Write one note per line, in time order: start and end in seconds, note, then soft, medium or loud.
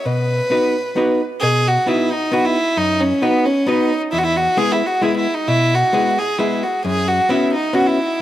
0.06 0.39 B2 medium
0.06 1.21 B4 medium
0.50 0.74 B3 soft
0.50 0.75 D#4 soft
0.50 0.75 F#4 soft
0.50 0.75 B4 medium
0.96 1.20 B3 medium
0.96 1.21 D#4 medium
0.96 1.21 F#4 medium
0.96 1.21 B4 medium
1.41 1.77 B2 medium
1.41 1.69 G#4 loud
1.68 1.89 F#4 medium
1.87 2.11 B3 medium
1.87 2.11 D#4 soft
1.87 2.13 E4 medium
1.87 2.11 F#4 soft
1.87 2.11 B4 soft
2.12 2.34 D#4 medium
2.32 2.56 B3 medium
2.32 2.56 D#4 soft
2.32 2.46 F#4 medium
2.32 2.56 F#4 soft
2.32 2.57 B4 medium
2.45 2.79 E4 medium
2.77 3.11 F#2 medium
2.77 3.02 D#4 loud
3.00 3.24 C#4 medium
3.22 3.47 B3 loud
3.22 3.46 B3 medium
3.22 3.46 D#4 medium
3.22 3.46 F#4 soft
3.22 3.47 B4 medium
3.45 3.68 C#4 medium
3.67 3.91 B3 medium
3.67 4.02 D#4 medium
3.67 3.91 D#4 soft
3.67 3.92 F#4 soft
3.67 3.92 B4 medium
4.12 4.47 E2 medium
4.12 4.20 E4 loud
4.18 4.25 F#4 medium
4.23 4.38 E4 loud
4.36 4.59 F#4 medium
4.57 4.81 G#3 medium
4.57 4.81 B3 medium
4.57 4.82 E4 medium
4.57 4.73 G#4 loud
4.57 4.82 G#4 medium
4.72 4.88 E4 medium
4.86 5.03 F#4 medium
5.02 5.26 G#3 medium
5.02 5.26 B3 soft
5.02 5.17 E4 medium
5.02 5.27 E4 medium
5.02 5.27 G#4 medium
5.17 5.36 E4 medium
5.34 5.49 D#4 medium
5.48 5.82 B2 medium
5.48 5.76 E4 loud
5.74 6.20 F#4 medium
5.93 6.17 G#3 medium
5.93 6.17 B3 soft
5.93 6.17 E4 medium
5.93 6.18 G#4 medium
6.18 6.39 G#4 medium
6.38 6.63 G#3 medium
6.38 6.63 B3 soft
6.38 6.64 E4 medium
6.38 6.63 E4 soft
6.38 6.63 G#4 medium
6.63 6.84 F#4 medium
6.84 7.19 F#2 medium
6.84 7.09 G#4 medium
7.08 7.31 F#4 medium
7.29 7.54 B3 medium
7.29 7.53 C#4 soft
7.29 7.53 E4 medium
7.29 7.54 E4 medium
7.29 7.54 F#4 medium
7.53 7.75 D#4 medium
7.73 7.98 B3 medium
7.73 7.98 C#4 medium
7.73 7.98 E4 soft
7.73 7.88 F#4 medium
7.73 7.99 F#4 medium
7.87 8.22 E4 medium